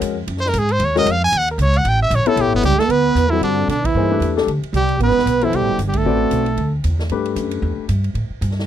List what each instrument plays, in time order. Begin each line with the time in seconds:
Already playing: grand piano G#3 C#4 F#4 A#4
0.01 upright bass F2, hi-hat pedal, ride
0.27 upright bass F#2, ride
0.37 trumpet C5, snare
0.46 trumpet A#4, snare
0.53 upright bass G#2, hi-hat pedal, ride
0.59 trumpet G#4
0.69 trumpet C5, ride
0.79 upright bass D#2, ride
0.85 trumpet C#5
0.95 grand piano G#3 C#4 F#4 A#4, trumpet D#5, snare
1.06 upright bass F2, hi-hat pedal, ride
1.11 trumpet F5
1.24 trumpet G#5
1.32 upright bass D#2, ride
1.38 trumpet F#5
1.48 trumpet A#4, ride
1.58 upright bass C#2, trumpet C#5, hi-hat pedal, ride
1.74 trumpet F#5, ride
1.85 upright bass A1, ride
1.89 trumpet G5
2.03 trumpet E5
2.10 upright bass A#1, hi-hat pedal, ride
2.15 trumpet C#5
2.25 grand piano B3 E4 A4 C#5, trumpet A4, muted upright bass stroke, ride
2.36 upright bass B1, ride
2.41 upright bass A1, trumpet G4
2.54 upright bass G1, trumpet B3
2.62 upright bass C#2, trombone G3, trumpet G4, hi-hat pedal, ride
2.78 trombone A3, trumpet A4, muted upright bass stroke, snare
2.87 upright bass D2, trombone B3, trumpet B4, ride
3.15 upright bass E2, hi-hat pedal, ride
3.29 trombone E3, grand piano G3 C4 F#4, trumpet E4
3.33 grand piano A4
3.41 upright bass G2, trombone D3, trumpet D4, ride
3.67 upright bass B2, trombone D3, trumpet D4, hi-hat pedal, ride
3.83 trombone E3, trumpet E4, kick, ride
3.94 upright bass G2, grand piano A#3 D#4 G#4 C5
4.11 grand piano A3 D4 G4 B4
4.20 upright bass E2, hi-hat pedal, ride
4.36 grand piano A3 D4 G4 A4, snare
4.47 upright bass D2, ride
4.62 muted upright bass stroke, ride
4.73 upright bass C2, trombone G3, trumpet G4, hi-hat pedal, ride
4.89 ride
4.99 upright bass A1, trombone B3, ride
5.04 trumpet B4
5.08 upright bass G1, snare
5.17 upright bass D1, snare
5.26 upright bass B1, hi-hat pedal, ride
5.41 grand piano B2 E4 A4 C5, trombone E3, trumpet E4, ride
5.52 upright bass C2, trombone G3, trumpet G4, ride
5.61 upright bass A1
5.70 upright bass G1
5.78 upright bass G1, hi-hat pedal, ride
5.86 trombone G3, trumpet G4
5.93 trombone A3, trumpet A4, kick, ride
6.05 upright bass A1, grand piano C4 F#4 B4 D5
6.31 upright bass B1, hi-hat pedal, ride
6.46 ride
6.57 upright bass D2, ride
6.84 upright bass E2, hi-hat pedal, ride
6.99 snare
7.09 upright bass G2, grand piano A3 D4 G4 B4, ride
7.25 ride
7.36 upright bass F#2, hi-hat pedal, ride
7.51 ride
7.62 upright bass E2
7.78 muted upright bass stroke
7.89 upright bass G2, hi-hat pedal, ride
8.04 ride
8.14 upright bass A2, ride
8.30 muted upright bass stroke
8.41 upright bass G2, hi-hat pedal, ride
8.51 snare
8.59 snare